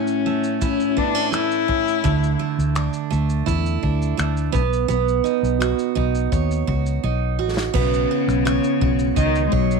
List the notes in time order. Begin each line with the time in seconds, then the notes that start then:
Already playing: A2 A3 C#4 E4
0.07 shaker
0.26 A3
0.44 shaker
0.61 C#4 E4, kick, shaker
0.80 shaker
0.97 B3 D4, kick
1.15 C#4, shaker
1.32 A3 E4, finger snap, shaker
1.51 shaker
1.68 C#4, kick
1.88 shaker
2.04 D2 D3, kick, shaker
2.24 shaker
2.39 A3
2.59 D2, shaker
2.75 D4, finger snap, shaker
2.93 shaker
3.11 D2 A3, shaker
3.30 shaker
3.46 E2 E4, kick, shaker
3.66 shaker
3.83 D2 D4, kick
4.02 shaker
4.17 D2 A3, finger snap, shaker
4.37 shaker
4.52 B1 B3, kick, shaker
4.73 shaker
4.88 B1 B3, shaker
5.08 shaker
5.24 D#4, shaker
5.43 B1, shaker
5.60 F#4, finger snap, shaker
5.79 shaker
5.95 B1 D#4, kick
6.15 shaker
6.32 D#2 C#5, kick, shaker
6.51 shaker
6.67 C#2 F#4, kick
6.86 shaker
7.04 B1 D#4
7.39 A1 F#4
7.57 snare
7.73 B1 C#3 B3, kick, crash
7.94 shaker
8.11 F#4
8.28 B1, finger snap, shaker
8.45 C#5, finger snap, shaker
8.64 shaker
8.81 B1 F#4, kick
8.99 shaker
9.16 C#2 D#3 D#4, kick, shaker
9.35 shaker
9.46 G#3
9.52 B1 F#3 C#5, kick
9.71 shaker